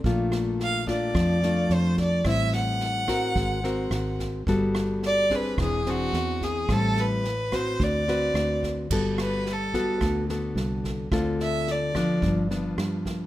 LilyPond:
<<
  \new Staff \with { instrumentName = "Violin" } { \time 4/4 \key g \major \tempo 4 = 108 r4 f''8 d''4. c''8 d''8 | e''8 fis''2. r8 | r4 d''8 b'8 gis'8 fis'4 gis'8 | a'8 b'4 c''8 d''4. r8 |
r8 b'8 a'4 r2 | r8 e''8 d''4 r2 | }
  \new Staff \with { instrumentName = "Nylon-string guitar" } { \time 4/4 \key g \major << { <a d' f'>4. <a d' f'>4 <a d' f'>4. | <g c' e'>4. <c' fis' bes'>4 <c' ges' bes'>4. | <b fis' a'>4. <c' d' aes'>4 <c' d' gis'>4. | <g c' e'>4 r8 <c' fis' b'>4 <c' fis' b'>4. |
<b fis' a'>4 r8 <b fis' a'>4 <b fis' a'>4. | <c' f' a'>4. <f b d'>4 <f b d'>4. | } \\ { bes,2 f2 | a,2 aes2 | g2 e2 | a,2 d2 |
g2 d2 | d2 g,2 | } >> }
  \new Staff \with { instrumentName = "Fingered electric bass" } { \clef bass \time 4/4 \key g \major bes,,2 f,4 f,4 | a,,2 aes,,4 aes,,4 | g,,2 e,,4 e,4 | a,,2 d,4 d,4 |
g,,2 d,4 c,4 | d,2 g,,4 g,4 | }
  \new DrumStaff \with { instrumentName = "Drums" } \drummode { \time 4/4 <bd sn>8 <ss sn>8 sn8 <bd sn>8 <bd ss sn>8 sn8 sn8 <bd sn>8 | <bd ss sn>8 sn8 sn8 <bd ss sn>8 <bd sn>8 sn8 <ss sn>8 <bd sn>8 | <bd sn>8 <ss sn>8 sn8 <bd sn>8 <bd ss sn>8 sn8 sn8 <bd sn>8 | <bd ss sn>8 sn8 sn8 <bd ss sn>8 <bd sn>8 sn8 <ss sn>8 <bd sn>8 |
<cymc bd sn>8 <ss sn>8 sn8 <bd sn>8 <bd ss sn>8 sn8 sn8 <bd sn>8 | <bd ss sn>8 sn8 sn8 <bd ss sn>8 <bd sn>8 sn8 <ss sn>8 <bd sn>8 | }
>>